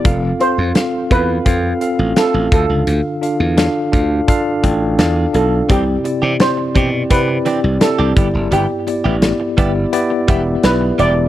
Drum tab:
HH |xxxxxxxx|xxxxxxxx|xxxxxxxx|xxxxxxxx|
SD |--o---o-|--o---o-|--o---o-|--o---o-|
BD |o--oo--o|---ooo--|o--oo--o|---o-o--|